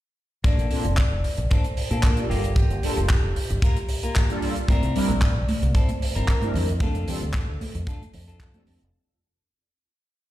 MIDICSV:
0, 0, Header, 1, 8, 480
1, 0, Start_track
1, 0, Tempo, 530973
1, 400, Time_signature, 4, 2, 24, 8
1, 9316, End_track
2, 0, Start_track
2, 0, Title_t, "Vibraphone"
2, 0, Program_c, 0, 11
2, 398, Note_on_c, 0, 74, 102
2, 1354, Note_on_c, 0, 72, 93
2, 1387, Note_off_c, 0, 74, 0
2, 1803, Note_off_c, 0, 72, 0
2, 1833, Note_on_c, 0, 70, 85
2, 2282, Note_off_c, 0, 70, 0
2, 2314, Note_on_c, 0, 67, 76
2, 3961, Note_off_c, 0, 67, 0
2, 4237, Note_on_c, 0, 74, 105
2, 5201, Note_on_c, 0, 72, 99
2, 5227, Note_off_c, 0, 74, 0
2, 5681, Note_on_c, 0, 70, 89
2, 5695, Note_off_c, 0, 72, 0
2, 6162, Note_on_c, 0, 69, 82
2, 6174, Note_off_c, 0, 70, 0
2, 7805, Note_off_c, 0, 69, 0
2, 9316, End_track
3, 0, Start_track
3, 0, Title_t, "Clean electric guitar"
3, 0, Program_c, 1, 27
3, 396, Note_on_c, 1, 58, 99
3, 400, Note_on_c, 1, 62, 88
3, 406, Note_on_c, 1, 69, 89
3, 767, Note_off_c, 1, 58, 0
3, 767, Note_off_c, 1, 62, 0
3, 767, Note_off_c, 1, 69, 0
3, 1357, Note_on_c, 1, 58, 85
3, 1362, Note_on_c, 1, 62, 67
3, 1367, Note_on_c, 1, 69, 75
3, 1487, Note_off_c, 1, 58, 0
3, 1487, Note_off_c, 1, 62, 0
3, 1488, Note_off_c, 1, 69, 0
3, 1724, Note_on_c, 1, 69, 89
3, 1728, Note_on_c, 1, 62, 74
3, 1732, Note_on_c, 1, 58, 73
3, 2023, Note_off_c, 1, 58, 0
3, 2023, Note_off_c, 1, 62, 0
3, 2023, Note_off_c, 1, 69, 0
3, 2076, Note_on_c, 1, 67, 91
3, 2079, Note_on_c, 1, 65, 69
3, 2082, Note_on_c, 1, 58, 76
3, 2849, Note_off_c, 1, 58, 0
3, 2850, Note_off_c, 1, 65, 0
3, 2850, Note_off_c, 1, 67, 0
3, 3276, Note_on_c, 1, 58, 81
3, 3280, Note_on_c, 1, 65, 74
3, 3285, Note_on_c, 1, 70, 81
3, 3407, Note_off_c, 1, 58, 0
3, 3407, Note_off_c, 1, 65, 0
3, 3407, Note_off_c, 1, 70, 0
3, 3645, Note_on_c, 1, 70, 80
3, 3649, Note_on_c, 1, 65, 76
3, 3653, Note_on_c, 1, 58, 76
3, 3943, Note_off_c, 1, 58, 0
3, 3943, Note_off_c, 1, 65, 0
3, 3944, Note_off_c, 1, 70, 0
3, 4237, Note_on_c, 1, 60, 114
3, 4242, Note_on_c, 1, 64, 93
3, 4245, Note_on_c, 1, 70, 112
3, 4607, Note_off_c, 1, 60, 0
3, 4607, Note_off_c, 1, 64, 0
3, 4607, Note_off_c, 1, 70, 0
3, 5195, Note_on_c, 1, 60, 83
3, 5201, Note_on_c, 1, 64, 69
3, 5205, Note_on_c, 1, 69, 81
3, 5326, Note_off_c, 1, 60, 0
3, 5326, Note_off_c, 1, 69, 0
3, 5327, Note_off_c, 1, 64, 0
3, 5563, Note_on_c, 1, 70, 92
3, 5567, Note_on_c, 1, 64, 74
3, 5571, Note_on_c, 1, 60, 78
3, 5862, Note_off_c, 1, 60, 0
3, 5862, Note_off_c, 1, 64, 0
3, 5863, Note_off_c, 1, 70, 0
3, 6155, Note_on_c, 1, 62, 97
3, 6161, Note_on_c, 1, 65, 100
3, 6164, Note_on_c, 1, 69, 100
3, 6526, Note_off_c, 1, 62, 0
3, 6527, Note_off_c, 1, 65, 0
3, 6527, Note_off_c, 1, 69, 0
3, 7115, Note_on_c, 1, 62, 90
3, 7121, Note_on_c, 1, 65, 74
3, 7126, Note_on_c, 1, 69, 92
3, 7246, Note_off_c, 1, 62, 0
3, 7247, Note_off_c, 1, 65, 0
3, 7247, Note_off_c, 1, 69, 0
3, 7483, Note_on_c, 1, 69, 97
3, 7486, Note_on_c, 1, 65, 76
3, 7489, Note_on_c, 1, 62, 72
3, 7782, Note_off_c, 1, 62, 0
3, 7782, Note_off_c, 1, 65, 0
3, 7782, Note_off_c, 1, 69, 0
3, 9316, End_track
4, 0, Start_track
4, 0, Title_t, "Analog polysynth"
4, 0, Program_c, 2, 90
4, 634, Note_on_c, 2, 58, 89
4, 637, Note_on_c, 2, 60, 84
4, 638, Note_on_c, 2, 62, 85
4, 641, Note_on_c, 2, 65, 86
4, 644, Note_on_c, 2, 69, 99
4, 781, Note_off_c, 2, 58, 0
4, 782, Note_off_c, 2, 60, 0
4, 783, Note_off_c, 2, 62, 0
4, 784, Note_off_c, 2, 65, 0
4, 786, Note_off_c, 2, 69, 0
4, 1962, Note_on_c, 2, 55, 80
4, 1965, Note_on_c, 2, 58, 74
4, 1967, Note_on_c, 2, 62, 74
4, 1969, Note_on_c, 2, 65, 75
4, 1971, Note_on_c, 2, 69, 85
4, 2184, Note_off_c, 2, 55, 0
4, 2185, Note_off_c, 2, 58, 0
4, 2186, Note_off_c, 2, 62, 0
4, 2187, Note_off_c, 2, 65, 0
4, 2188, Note_off_c, 2, 69, 0
4, 2555, Note_on_c, 2, 55, 92
4, 2558, Note_on_c, 2, 58, 82
4, 2559, Note_on_c, 2, 62, 84
4, 2562, Note_on_c, 2, 65, 84
4, 2565, Note_on_c, 2, 69, 104
4, 2701, Note_off_c, 2, 55, 0
4, 2703, Note_off_c, 2, 58, 0
4, 2703, Note_off_c, 2, 62, 0
4, 2705, Note_off_c, 2, 65, 0
4, 2706, Note_off_c, 2, 69, 0
4, 3882, Note_on_c, 2, 55, 81
4, 3884, Note_on_c, 2, 58, 76
4, 3887, Note_on_c, 2, 62, 73
4, 3889, Note_on_c, 2, 65, 76
4, 3890, Note_on_c, 2, 69, 88
4, 4104, Note_off_c, 2, 55, 0
4, 4105, Note_off_c, 2, 58, 0
4, 4106, Note_off_c, 2, 62, 0
4, 4107, Note_off_c, 2, 65, 0
4, 4108, Note_off_c, 2, 69, 0
4, 4473, Note_on_c, 2, 55, 94
4, 4476, Note_on_c, 2, 60, 86
4, 4478, Note_on_c, 2, 62, 88
4, 4481, Note_on_c, 2, 64, 85
4, 4483, Note_on_c, 2, 70, 104
4, 4620, Note_off_c, 2, 55, 0
4, 4622, Note_off_c, 2, 60, 0
4, 4623, Note_off_c, 2, 62, 0
4, 4624, Note_off_c, 2, 64, 0
4, 4625, Note_off_c, 2, 70, 0
4, 5803, Note_on_c, 2, 55, 80
4, 5805, Note_on_c, 2, 60, 75
4, 5807, Note_on_c, 2, 62, 76
4, 5809, Note_on_c, 2, 64, 78
4, 5811, Note_on_c, 2, 70, 91
4, 6024, Note_off_c, 2, 55, 0
4, 6025, Note_off_c, 2, 60, 0
4, 6026, Note_off_c, 2, 62, 0
4, 6027, Note_off_c, 2, 64, 0
4, 6028, Note_off_c, 2, 70, 0
4, 6394, Note_on_c, 2, 55, 98
4, 6396, Note_on_c, 2, 60, 86
4, 6399, Note_on_c, 2, 62, 86
4, 6401, Note_on_c, 2, 65, 87
4, 6404, Note_on_c, 2, 69, 105
4, 6541, Note_off_c, 2, 55, 0
4, 6542, Note_off_c, 2, 60, 0
4, 6543, Note_off_c, 2, 62, 0
4, 6544, Note_off_c, 2, 65, 0
4, 6546, Note_off_c, 2, 69, 0
4, 7721, Note_on_c, 2, 55, 82
4, 7724, Note_on_c, 2, 60, 80
4, 7726, Note_on_c, 2, 62, 76
4, 7729, Note_on_c, 2, 65, 76
4, 7731, Note_on_c, 2, 69, 91
4, 7943, Note_off_c, 2, 55, 0
4, 7945, Note_off_c, 2, 60, 0
4, 7946, Note_off_c, 2, 62, 0
4, 7947, Note_off_c, 2, 65, 0
4, 7948, Note_off_c, 2, 69, 0
4, 9316, End_track
5, 0, Start_track
5, 0, Title_t, "Fingered electric bass"
5, 0, Program_c, 3, 33
5, 527, Note_on_c, 3, 34, 87
5, 597, Note_off_c, 3, 34, 0
5, 767, Note_on_c, 3, 29, 75
5, 912, Note_off_c, 3, 29, 0
5, 1008, Note_on_c, 3, 29, 78
5, 1078, Note_off_c, 3, 29, 0
5, 1246, Note_on_c, 3, 34, 74
5, 1317, Note_off_c, 3, 34, 0
5, 1727, Note_on_c, 3, 46, 88
5, 2012, Note_off_c, 3, 46, 0
5, 2079, Note_on_c, 3, 31, 85
5, 2371, Note_off_c, 3, 31, 0
5, 2444, Note_on_c, 3, 31, 88
5, 2516, Note_off_c, 3, 31, 0
5, 2686, Note_on_c, 3, 29, 74
5, 2832, Note_off_c, 3, 29, 0
5, 2926, Note_on_c, 3, 29, 78
5, 2997, Note_off_c, 3, 29, 0
5, 3165, Note_on_c, 3, 31, 76
5, 3237, Note_off_c, 3, 31, 0
5, 4366, Note_on_c, 3, 36, 91
5, 4437, Note_off_c, 3, 36, 0
5, 4607, Note_on_c, 3, 34, 78
5, 4752, Note_off_c, 3, 34, 0
5, 4846, Note_on_c, 3, 34, 82
5, 4917, Note_off_c, 3, 34, 0
5, 5086, Note_on_c, 3, 36, 77
5, 5157, Note_off_c, 3, 36, 0
5, 5567, Note_on_c, 3, 31, 93
5, 5853, Note_off_c, 3, 31, 0
5, 5918, Note_on_c, 3, 41, 94
5, 6211, Note_off_c, 3, 41, 0
5, 6285, Note_on_c, 3, 41, 95
5, 6356, Note_off_c, 3, 41, 0
5, 6526, Note_on_c, 3, 38, 77
5, 6672, Note_off_c, 3, 38, 0
5, 6767, Note_on_c, 3, 38, 84
5, 6838, Note_off_c, 3, 38, 0
5, 7006, Note_on_c, 3, 41, 79
5, 7077, Note_off_c, 3, 41, 0
5, 7359, Note_on_c, 3, 41, 94
5, 7773, Note_off_c, 3, 41, 0
5, 7839, Note_on_c, 3, 41, 90
5, 7919, Note_off_c, 3, 41, 0
5, 7967, Note_on_c, 3, 29, 84
5, 8038, Note_off_c, 3, 29, 0
5, 9316, End_track
6, 0, Start_track
6, 0, Title_t, "Muted clean electric guitar strokes"
6, 1117, Note_on_c, 9, 29, 31
6, 1207, Note_off_c, 9, 29, 0
6, 1245, Note_on_c, 9, 29, 75
6, 1336, Note_off_c, 9, 29, 0
6, 1597, Note_on_c, 9, 29, 29
6, 1687, Note_off_c, 9, 29, 0
6, 3036, Note_on_c, 9, 29, 30
6, 3127, Note_off_c, 9, 29, 0
6, 3163, Note_on_c, 9, 29, 82
6, 3253, Note_off_c, 9, 29, 0
6, 3517, Note_on_c, 9, 29, 32
6, 3607, Note_off_c, 9, 29, 0
6, 4957, Note_on_c, 9, 29, 31
6, 5048, Note_off_c, 9, 29, 0
6, 5085, Note_on_c, 9, 29, 87
6, 5176, Note_off_c, 9, 29, 0
6, 5437, Note_on_c, 9, 29, 33
6, 5528, Note_off_c, 9, 29, 0
6, 6879, Note_on_c, 9, 29, 30
6, 6969, Note_off_c, 9, 29, 0
6, 7006, Note_on_c, 9, 29, 86
6, 7096, Note_off_c, 9, 29, 0
6, 7356, Note_on_c, 9, 29, 33
6, 7447, Note_off_c, 9, 29, 0
6, 9316, End_track
7, 0, Start_track
7, 0, Title_t, "Muted fingered electric bass strokes"
7, 401, Note_on_c, 9, 29, 37
7, 491, Note_off_c, 9, 29, 0
7, 1120, Note_on_c, 9, 29, 37
7, 1211, Note_off_c, 9, 29, 0
7, 3039, Note_on_c, 9, 29, 40
7, 3129, Note_off_c, 9, 29, 0
7, 4235, Note_on_c, 9, 29, 40
7, 4325, Note_off_c, 9, 29, 0
7, 6879, Note_on_c, 9, 29, 42
7, 6969, Note_off_c, 9, 29, 0
7, 9316, End_track
8, 0, Start_track
8, 0, Title_t, "Drums"
8, 401, Note_on_c, 9, 36, 111
8, 402, Note_on_c, 9, 42, 70
8, 491, Note_off_c, 9, 36, 0
8, 492, Note_off_c, 9, 42, 0
8, 533, Note_on_c, 9, 42, 49
8, 624, Note_off_c, 9, 42, 0
8, 638, Note_on_c, 9, 46, 93
8, 729, Note_off_c, 9, 46, 0
8, 765, Note_on_c, 9, 42, 57
8, 856, Note_off_c, 9, 42, 0
8, 879, Note_on_c, 9, 39, 102
8, 881, Note_on_c, 9, 42, 71
8, 887, Note_on_c, 9, 36, 106
8, 969, Note_off_c, 9, 39, 0
8, 972, Note_off_c, 9, 42, 0
8, 977, Note_off_c, 9, 36, 0
8, 1124, Note_on_c, 9, 46, 95
8, 1214, Note_off_c, 9, 46, 0
8, 1243, Note_on_c, 9, 42, 61
8, 1334, Note_off_c, 9, 42, 0
8, 1362, Note_on_c, 9, 42, 74
8, 1368, Note_on_c, 9, 36, 111
8, 1452, Note_off_c, 9, 42, 0
8, 1458, Note_off_c, 9, 36, 0
8, 1487, Note_on_c, 9, 42, 47
8, 1577, Note_off_c, 9, 42, 0
8, 1600, Note_on_c, 9, 46, 104
8, 1691, Note_off_c, 9, 46, 0
8, 1726, Note_on_c, 9, 42, 61
8, 1816, Note_off_c, 9, 42, 0
8, 1836, Note_on_c, 9, 42, 66
8, 1837, Note_on_c, 9, 39, 109
8, 1839, Note_on_c, 9, 36, 111
8, 1927, Note_off_c, 9, 42, 0
8, 1928, Note_off_c, 9, 39, 0
8, 1929, Note_off_c, 9, 36, 0
8, 1961, Note_on_c, 9, 42, 52
8, 2051, Note_off_c, 9, 42, 0
8, 2089, Note_on_c, 9, 46, 97
8, 2179, Note_off_c, 9, 46, 0
8, 2206, Note_on_c, 9, 42, 69
8, 2296, Note_off_c, 9, 42, 0
8, 2314, Note_on_c, 9, 36, 120
8, 2317, Note_on_c, 9, 42, 79
8, 2405, Note_off_c, 9, 36, 0
8, 2408, Note_off_c, 9, 42, 0
8, 2445, Note_on_c, 9, 42, 43
8, 2536, Note_off_c, 9, 42, 0
8, 2561, Note_on_c, 9, 46, 108
8, 2651, Note_off_c, 9, 46, 0
8, 2684, Note_on_c, 9, 42, 61
8, 2774, Note_off_c, 9, 42, 0
8, 2798, Note_on_c, 9, 39, 117
8, 2798, Note_on_c, 9, 42, 71
8, 2803, Note_on_c, 9, 36, 119
8, 2889, Note_off_c, 9, 39, 0
8, 2889, Note_off_c, 9, 42, 0
8, 2893, Note_off_c, 9, 36, 0
8, 3040, Note_on_c, 9, 46, 105
8, 3130, Note_off_c, 9, 46, 0
8, 3167, Note_on_c, 9, 42, 59
8, 3257, Note_off_c, 9, 42, 0
8, 3275, Note_on_c, 9, 36, 126
8, 3283, Note_on_c, 9, 42, 78
8, 3365, Note_off_c, 9, 36, 0
8, 3373, Note_off_c, 9, 42, 0
8, 3404, Note_on_c, 9, 42, 50
8, 3495, Note_off_c, 9, 42, 0
8, 3513, Note_on_c, 9, 46, 105
8, 3603, Note_off_c, 9, 46, 0
8, 3645, Note_on_c, 9, 42, 59
8, 3736, Note_off_c, 9, 42, 0
8, 3759, Note_on_c, 9, 39, 118
8, 3761, Note_on_c, 9, 42, 68
8, 3765, Note_on_c, 9, 36, 108
8, 3849, Note_off_c, 9, 39, 0
8, 3851, Note_off_c, 9, 42, 0
8, 3855, Note_off_c, 9, 36, 0
8, 3886, Note_on_c, 9, 42, 46
8, 3977, Note_off_c, 9, 42, 0
8, 3999, Note_on_c, 9, 46, 99
8, 4089, Note_off_c, 9, 46, 0
8, 4125, Note_on_c, 9, 42, 56
8, 4215, Note_off_c, 9, 42, 0
8, 4235, Note_on_c, 9, 36, 115
8, 4235, Note_on_c, 9, 63, 83
8, 4245, Note_on_c, 9, 42, 71
8, 4325, Note_off_c, 9, 36, 0
8, 4326, Note_off_c, 9, 63, 0
8, 4336, Note_off_c, 9, 42, 0
8, 4365, Note_on_c, 9, 42, 52
8, 4456, Note_off_c, 9, 42, 0
8, 4481, Note_on_c, 9, 46, 113
8, 4571, Note_off_c, 9, 46, 0
8, 4604, Note_on_c, 9, 42, 59
8, 4607, Note_on_c, 9, 63, 65
8, 4694, Note_off_c, 9, 42, 0
8, 4698, Note_off_c, 9, 63, 0
8, 4717, Note_on_c, 9, 36, 105
8, 4717, Note_on_c, 9, 39, 117
8, 4718, Note_on_c, 9, 42, 73
8, 4808, Note_off_c, 9, 36, 0
8, 4808, Note_off_c, 9, 39, 0
8, 4809, Note_off_c, 9, 42, 0
8, 4959, Note_on_c, 9, 46, 98
8, 4961, Note_on_c, 9, 63, 96
8, 5049, Note_off_c, 9, 46, 0
8, 5051, Note_off_c, 9, 63, 0
8, 5089, Note_on_c, 9, 42, 59
8, 5179, Note_off_c, 9, 42, 0
8, 5195, Note_on_c, 9, 36, 107
8, 5200, Note_on_c, 9, 42, 71
8, 5286, Note_off_c, 9, 36, 0
8, 5291, Note_off_c, 9, 42, 0
8, 5321, Note_on_c, 9, 63, 63
8, 5323, Note_on_c, 9, 42, 46
8, 5411, Note_off_c, 9, 63, 0
8, 5413, Note_off_c, 9, 42, 0
8, 5445, Note_on_c, 9, 46, 110
8, 5535, Note_off_c, 9, 46, 0
8, 5571, Note_on_c, 9, 42, 59
8, 5661, Note_off_c, 9, 42, 0
8, 5680, Note_on_c, 9, 36, 103
8, 5681, Note_on_c, 9, 39, 109
8, 5681, Note_on_c, 9, 42, 71
8, 5771, Note_off_c, 9, 36, 0
8, 5771, Note_off_c, 9, 39, 0
8, 5772, Note_off_c, 9, 42, 0
8, 5800, Note_on_c, 9, 63, 95
8, 5808, Note_on_c, 9, 42, 46
8, 5890, Note_off_c, 9, 63, 0
8, 5898, Note_off_c, 9, 42, 0
8, 5912, Note_on_c, 9, 64, 85
8, 5925, Note_on_c, 9, 46, 119
8, 6003, Note_off_c, 9, 64, 0
8, 6016, Note_off_c, 9, 46, 0
8, 6047, Note_on_c, 9, 42, 63
8, 6138, Note_off_c, 9, 42, 0
8, 6150, Note_on_c, 9, 36, 125
8, 6155, Note_on_c, 9, 42, 77
8, 6159, Note_on_c, 9, 63, 80
8, 6240, Note_off_c, 9, 36, 0
8, 6245, Note_off_c, 9, 42, 0
8, 6249, Note_off_c, 9, 63, 0
8, 6282, Note_on_c, 9, 42, 51
8, 6372, Note_off_c, 9, 42, 0
8, 6397, Note_on_c, 9, 46, 118
8, 6402, Note_on_c, 9, 64, 79
8, 6487, Note_off_c, 9, 46, 0
8, 6493, Note_off_c, 9, 64, 0
8, 6526, Note_on_c, 9, 42, 57
8, 6527, Note_on_c, 9, 63, 63
8, 6616, Note_off_c, 9, 42, 0
8, 6617, Note_off_c, 9, 63, 0
8, 6632, Note_on_c, 9, 39, 113
8, 6637, Note_on_c, 9, 36, 119
8, 6642, Note_on_c, 9, 42, 76
8, 6723, Note_off_c, 9, 39, 0
8, 6727, Note_off_c, 9, 36, 0
8, 6732, Note_off_c, 9, 42, 0
8, 6878, Note_on_c, 9, 63, 88
8, 6882, Note_on_c, 9, 46, 107
8, 6969, Note_off_c, 9, 63, 0
8, 6973, Note_off_c, 9, 46, 0
8, 7004, Note_on_c, 9, 42, 63
8, 7095, Note_off_c, 9, 42, 0
8, 7114, Note_on_c, 9, 36, 127
8, 7125, Note_on_c, 9, 42, 68
8, 7204, Note_off_c, 9, 36, 0
8, 7215, Note_off_c, 9, 42, 0
8, 7247, Note_on_c, 9, 63, 70
8, 7256, Note_on_c, 9, 42, 53
8, 7338, Note_off_c, 9, 63, 0
8, 7346, Note_off_c, 9, 42, 0
8, 7354, Note_on_c, 9, 46, 116
8, 7445, Note_off_c, 9, 46, 0
8, 7497, Note_on_c, 9, 42, 65
8, 7588, Note_off_c, 9, 42, 0
8, 7592, Note_on_c, 9, 36, 119
8, 7592, Note_on_c, 9, 42, 79
8, 7600, Note_on_c, 9, 39, 122
8, 7682, Note_off_c, 9, 36, 0
8, 7683, Note_off_c, 9, 42, 0
8, 7691, Note_off_c, 9, 39, 0
8, 7721, Note_on_c, 9, 42, 47
8, 7722, Note_on_c, 9, 63, 98
8, 7812, Note_off_c, 9, 42, 0
8, 7813, Note_off_c, 9, 63, 0
8, 7837, Note_on_c, 9, 46, 113
8, 7927, Note_off_c, 9, 46, 0
8, 7967, Note_on_c, 9, 42, 62
8, 8057, Note_off_c, 9, 42, 0
8, 9316, End_track
0, 0, End_of_file